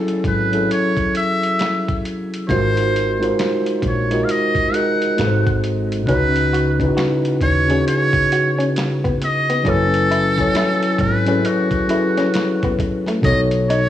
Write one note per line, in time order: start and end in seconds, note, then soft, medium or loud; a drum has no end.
0.00 0.52 F#3 medium
0.00 0.53 C#4 medium
0.00 0.54 E4 medium
0.00 0.39 G#4 medium
0.00 0.55 A4 medium
0.00 2.51 G#5 medium
0.08 closed hi-hat soft
0.24 0.64 G#1 medium
0.24 0.68 B4 medium
0.24 kick medium
0.24 closed hi-hat medium
0.52 2.03 F#3 medium
0.52 2.03 C#4 medium
0.52 2.04 E4 medium
0.52 2.04 G#4 medium
0.52 2.04 A4 medium
0.52 closed hi-hat soft
0.71 1.13 C#5 medium
0.71 closed hi-hat medium
0.97 kick medium
0.97 closed hi-hat soft
1.15 2.01 E5 medium
1.15 closed hi-hat medium
1.43 closed hi-hat soft
1.59 finger snap medium
1.59 snare loud
1.59 closed hi-hat medium
1.88 kick medium
1.88 closed hi-hat soft
2.05 closed hi-hat medium
2.34 closed hi-hat soft
2.48 3.28 G#1 loud
2.48 3.10 G#3 medium
2.48 3.10 D#4 medium
2.48 3.10 F4 medium
2.48 3.11 F#4 medium
2.48 3.11 A#4 medium
2.48 3.34 C5 loud
2.48 3.12 C5 loud
2.48 kick loud
2.48 closed hi-hat medium
2.77 closed hi-hat soft
2.96 closed hi-hat medium
3.20 3.95 G#3 medium
3.20 3.96 D#4 medium
3.20 3.96 F4 medium
3.20 3.97 F#4 medium
3.20 3.97 A#4 medium
3.20 closed hi-hat soft
3.24 3.97 C5 medium
3.39 finger snap medium
3.39 snare loud
3.39 closed hi-hat medium
3.66 closed hi-hat soft
3.82 4.22 A#1 medium
3.82 kick medium
3.82 closed hi-hat medium
3.88 4.26 C#5 medium
4.10 4.66 G#3 medium
4.10 4.66 D#4 medium
4.10 4.66 F4 medium
4.10 4.67 F#4 medium
4.10 4.67 A#4 medium
4.10 4.67 D#5 medium
4.10 closed hi-hat soft
4.24 4.32 F5 medium
4.29 4.76 D#5 medium
4.29 closed hi-hat medium
4.55 kick medium
4.55 closed hi-hat soft
4.71 5.16 G#3 medium
4.71 5.16 D#4 medium
4.71 5.17 F#4 medium
4.71 5.18 G#4 medium
4.71 5.19 A#4 medium
4.71 5.63 F#5 medium
4.71 closed hi-hat medium
4.76 5.19 D#5 medium
5.02 closed hi-hat soft
5.17 6.08 G#1 medium
5.17 5.97 G#3 medium
5.17 5.98 D#4 medium
5.17 5.98 F#4 medium
5.17 5.99 A4 medium
5.17 5.27 B4 medium
5.17 snare loud
5.17 closed hi-hat medium
5.21 finger snap medium
5.27 6.02 C5 medium
5.47 kick medium
5.47 closed hi-hat soft
5.64 closed hi-hat medium
5.92 closed hi-hat soft
6.07 6.86 C#2 loud
6.07 6.68 C#3 medium
6.07 6.69 C#4 medium
6.07 6.26 C#4 medium
6.07 6.69 D#4 medium
6.07 6.69 F#4 medium
6.07 6.93 B4 loud
6.07 6.70 B4 loud
6.07 kick loud
6.07 closed hi-hat medium
6.36 closed hi-hat soft
6.53 6.70 F#4 medium
6.53 closed hi-hat medium
6.79 7.54 C#3 medium
6.79 7.54 C#4 medium
6.79 7.55 D#4 medium
6.79 6.86 E4 medium
6.79 kick medium
6.79 closed hi-hat soft
6.83 7.56 B4 medium
6.88 7.59 F#4 medium
6.97 7.14 F#4 medium
6.97 finger snap medium
6.97 snare loud
6.97 closed hi-hat medium
7.25 closed hi-hat soft
7.41 7.81 D#2 medium
7.41 7.84 C#5 loud
7.41 muted clean electric guitar stroke soft
7.41 kick medium
7.41 closed hi-hat medium
7.67 9.18 C#3 medium
7.67 9.19 C#4 medium
7.67 7.81 C#4 medium
7.67 9.19 D#4 medium
7.67 9.20 F#4 medium
7.67 9.20 G#4 medium
7.67 closed hi-hat soft
7.87 8.72 C#5 loud
7.87 muted clean electric guitar stroke soft
7.87 closed hi-hat medium
8.13 kick medium
8.13 closed hi-hat soft
8.32 8.50 F#4 medium
8.32 closed hi-hat medium
8.59 8.70 C#4 medium
8.59 closed hi-hat soft
8.76 finger snap medium
8.76 snare loud
8.76 closed hi-hat medium
9.04 9.15 B3 medium
9.04 kick medium
9.04 closed hi-hat soft
9.22 9.71 D#5 loud
9.22 muted clean electric guitar stroke soft
9.22 closed hi-hat medium
9.50 9.60 B3 medium
9.50 closed hi-hat soft
9.63 10.44 F#1 medium
9.63 10.26 F#3 medium
9.63 10.26 C#4 medium
9.63 9.84 C#4 medium
9.63 10.27 E4 medium
9.63 10.27 A4 medium
9.63 10.27 G#5 medium
9.63 kick loud
9.63 closed hi-hat medium
9.68 11.02 A4 loud
9.68 10.28 B4 medium
9.94 closed hi-hat soft
10.11 10.28 E4 medium
10.11 closed hi-hat medium
10.37 11.12 F#3 medium
10.37 11.12 C#4 medium
10.37 11.13 E4 medium
10.37 11.14 A4 medium
10.37 11.14 C#5 medium
10.37 11.13 G#5 medium
10.37 kick medium
10.37 closed hi-hat soft
10.55 10.74 E4 medium
10.55 finger snap medium
10.55 snare loud
10.55 closed hi-hat medium
10.82 closed hi-hat soft
10.98 11.39 G#1 medium
10.98 11.48 B4 medium
10.98 muted clean electric guitar stroke soft
10.98 kick medium
10.98 closed hi-hat medium
11.25 11.81 F#3 medium
11.25 11.81 C#4 medium
11.25 11.39 C#4 medium
11.25 11.82 E4 medium
11.25 11.83 G#4 medium
11.25 11.83 A4 medium
11.25 11.83 B4 medium
11.25 closed hi-hat soft
11.45 12.79 F#4 medium
11.45 muted clean electric guitar stroke soft
11.45 closed hi-hat medium
11.71 kick medium
11.71 closed hi-hat soft
11.88 13.09 F#3 medium
11.88 13.09 C#4 medium
11.88 13.10 E4 medium
11.88 12.08 E4 medium
11.88 13.10 G#4 medium
11.88 13.10 A4 medium
11.88 13.11 B4 medium
11.88 closed hi-hat medium
12.18 12.28 C#4 medium
12.18 snare soft
12.18 closed hi-hat soft
12.34 finger snap medium
12.34 snare loud
12.34 closed hi-hat medium
12.63 12.75 B3 medium
12.63 kick medium
12.63 closed hi-hat soft
12.79 muted clean electric guitar stroke soft
12.79 kick medium
12.79 closed hi-hat medium
13.06 13.19 A3 medium
13.06 snare soft
13.06 closed hi-hat soft
13.21 13.89 B1 medium
13.21 13.84 B2 medium
13.21 13.84 B3 medium
13.21 13.85 D#4 medium
13.21 13.85 A4 medium
13.21 13.86 C#5 loud
13.21 13.41 D#5 loud
13.21 kick loud
13.21 closed hi-hat medium
13.51 closed hi-hat soft
13.69 13.87 D#4 medium
13.69 13.89 C#5 loud
13.69 closed hi-hat medium